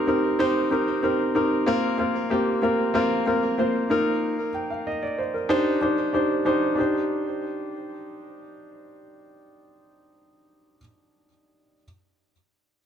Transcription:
grand piano
Already playing: C4 D#4 G4 A#4 C5
0.07 C4 D#4 G4 A#4
0.39 C4 D#4 G4 C5
0.71 C4 D#4 G4 A#4
1.03 C4 D#4 G4 A#4
1.35 C4 D#4 G4 A#4
1.66 A#3 C4 F4 A#4
1.98 A#3 C4 F4 A#4
2.30 A#3 C4 F4 G4
2.62 A#3 C4 F4 A#4
2.94 A#3 C4 F4 A#4
3.26 A#3 C4 F4 A#4
3.58 A#3 C4 F4 C5
3.90 A#3 D#4 F4 A#4
4.54 G5
4.70 F5
4.87 D#5
5.03 D5
5.18 C5
5.34 A#4
5.49 D4 D#4 G4 C5
5.81 D4 D#4 G4 C5
6.13 D4 D#4 G4 C5
6.45 D4 D#4 G4 C5
6.75 D4 D#4 G4
6.80 C5

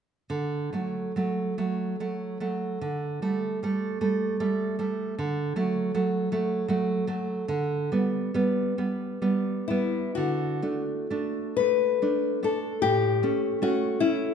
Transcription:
nylon-string guitar
0.30 D3
0.73 F#3 A3
1.16 F#3 A3
1.58 F#3 A3
2.00 F#3 A3
2.40 F#3 A3
2.81 D3
3.22 G3 A3
3.63 G3 A3
4.01 G3 A3
4.40 G3 A3
4.79 G3 A3
5.18 D3
5.56 F#3 A3
5.94 F#3 A3
6.32 F#3 A3
6.68 F#3 A3
7.07 F#3 A3
7.48 D3
7.92 G3 B3
8.34 G3 B3
8.78 G3 B3
9.22 G3 B3
9.68 G3 B3 E4
10.15 D3 F#4
10.62 A3 D4
11.10 A3 D4
11.57 A3 D4 B4
12.02 A3 D4
12.43 A3 D4 A4
12.82 A2 G4
13.23 A3 C#4
13.62 A3 C#4 F#4
14.00 A3 C#4 E4

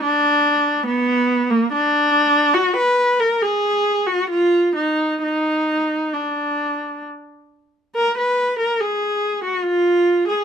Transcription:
viola
0.03 D4
0.86 B3
1.50 A#3
1.72 D4
2.54 F#4
2.76 B4
3.20 A#4
3.42 G#4
4.06 F#4
4.30 F4
4.75 D#4
5.23 D#4
6.13 D4
7.95 A#4
8.18 B4
8.59 A#4
8.81 G#4
9.44 F#4
9.64 F4
10.28 G#4

